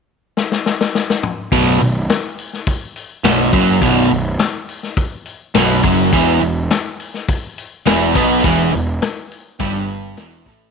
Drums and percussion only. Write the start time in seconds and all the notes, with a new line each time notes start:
0.37 snare
0.52 snare
0.66 snare
0.81 snare
0.95 snare
1.10 snare
1.23 mid tom
1.52 kick, open hi-hat
1.81 open hi-hat
2.09 snare, open hi-hat
2.38 open hi-hat
2.53 snare
2.67 kick, open hi-hat
2.96 open hi-hat
3.24 snare, open hi-hat
3.53 kick, open hi-hat
3.81 kick, open hi-hat
4.11 open hi-hat
4.39 snare, open hi-hat
4.69 open hi-hat
4.83 snare
4.97 kick, open hi-hat
5.26 open hi-hat
5.54 snare, open hi-hat
5.84 kick, open hi-hat
6.13 kick, open hi-hat
6.41 open hi-hat
6.70 snare, open hi-hat
7.00 open hi-hat
7.14 snare
7.29 kick, open hi-hat
7.58 open hi-hat
7.87 snare, open hi-hat
8.15 kick, open hi-hat
8.44 kick, open hi-hat
8.73 open hi-hat
9.02 snare, open hi-hat
9.32 open hi-hat
9.60 kick, open hi-hat
9.88 open hi-hat
10.17 snare, open hi-hat
10.46 kick, open hi-hat